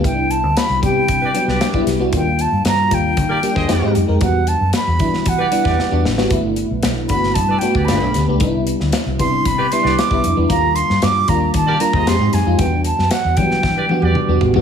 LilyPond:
<<
  \new Staff \with { instrumentName = "Flute" } { \time 4/4 \key c \lydian \tempo 4 = 115 g''8 a''8 b''8 g''2 r8 | g''8 a''8 bes''8 g''2 r8 | fis''8 a''8 b''4 fis''4. r8 | r4. b''8 a''8 g''8 b''8. r16 |
r4. c'''8 b''8 c'''8 d'''8. r16 | bes''8 c'''8 d'''8 bes''8 a''8 bes''8 c'''8 aes''8 | g''8 a''8 fis''8 g''4. r4 | }
  \new Staff \with { instrumentName = "Horn section" } { \time 4/4 \key c \lydian r2 r16 <g' b' d''>16 r16 <g' b' d''>8. r8 | r2 r16 <g' bes' d''>16 r16 <aes' c'' ees''>8. r8 | r2 r16 <g' b' d''>16 r16 <g' b' d''>8. r8 | r2 r16 <a' b' d''>16 r16 <g' b' d''>8. r8 |
r2 r16 <g' b' d''>16 r16 <g' b' d''>8. r8 | r2 r16 <g' bes' d''>16 r16 <aes' c'' ees''>8. r8 | r2 r16 <g' b' d''>16 r16 <g' b' d''>8. r8 | }
  \new Staff \with { instrumentName = "FM electric piano" } { \time 4/4 \key c \lydian <g b d' e'>4~ <g b d' e'>16 r16 <g b d' g'>8. r16 <fis g b d'>8 r16 <g b d' e'>8 <g b d' fis'>16 | <g bes d' f'>4~ <g bes d' f'>16 r16 <g bes d' f'>8. r16 <g bes d' g'>8 <aes c' ees' g'>16 <aes c' ees' g'>8 <aes c' ees' bes'>16 | <g b d' fis'>4~ <g b d' fis'>16 r16 <g b d' e'>8. r16 <g b d' e'>8 r16 <g b d' fis'>8 <g b d' fis'>16 | <a b d' e'>4~ <a b d' e'>16 r16 <a b d' fis'>8. r16 <a b d' fis'>8 <a b d' f'>16 <a b d' g'>8 <a b d' g'>16 |
<g b d' ees' e'>4~ <g b d' ees' e'>16 r16 <g b d' e'>8. r16 <g b d' e'>8 r16 <g b d' e'>8 <g b d' e'>16 | <g bes d' f'>4~ <g bes d' f'>16 r16 <g bes d' f'>8. r16 <g bes d' f'>8 <aes c' ees' g'>16 <aes c' ees' g'>8 <aes c' ees' f'>16 | <g b d' fis'>4~ <g b d' fis'>16 r16 <fis g b d'>8. r16 <g b d' fis'>8 r16 <g b d' fis'>8 <g b d' fis'>16 | }
  \new Staff \with { instrumentName = "Fingered electric bass" } { \clef bass \time 4/4 \key c \lydian r8. d,16 r16 c,16 c8 c8 r16 c,16 r8 c,8 | ees,8. g,16 g,8 ees,8 ees8 r16 ees,16 f,16 aes,16 fis,16 f,16 | e,8. fis,16 r16 e,16 e8 e8 r16 e,16 r16 e,16 a,,16 aes,,16 | g,,8. b,,16 b,,8 g,,8 g,8 r16 d,16 g,,16 b,,16 d,16 r16 |
c,8. d,16 r16 c,16 c8 c8 r16 c,16 r16 c,16 f,16 e,16 | ees,8. g,16 g,8 ees,8 ees8 r16 ees,16 f,16 aes,16 fis,16 f,16 | e,8. fis,16 r16 e,16 e8 e8 r16 e,16 r16 e,16 a,,16 aes,,16 | }
  \new DrumStaff \with { instrumentName = "Drums" } \drummode { \time 4/4 <hh bd>8 hh8 <hh sn>8 <hh bd>8 <hh bd>8 hh16 sn16 <hh sn>16 bd16 <hh sn>8 | <hh bd>8 hh8 <hh sn>8 <hh bd>8 <hh bd>8 hh16 <bd sn>16 <hh sn>8 hh8 | <hh bd>8 hh8 <hh sn>8 <hh bd>16 sn16 <hh bd>8 hh16 <bd sn>16 sn8 sn16 sn16 | <hh bd>8 hh8 <hh sn>8 <hh bd>16 sn16 <hh bd>8 hh16 bd16 <hh sn>8 <hh sn>8 |
<hh bd>8 hh16 sn16 <hh sn>8 <hh bd>8 <hh bd>8 hh16 sn16 <hh sn>16 bd16 hh8 | <hh bd>8 hh16 sn16 <hh sn>8 <hh bd>8 <hh bd>8 hh16 bd16 <hh sn>8 <hh sn>8 | <hh bd>8 hh16 sn16 <hh sn>8 <hh bd>16 sn16 <bd sn>8 tommh16 tommh16 toml8 tomfh16 tomfh16 | }
>>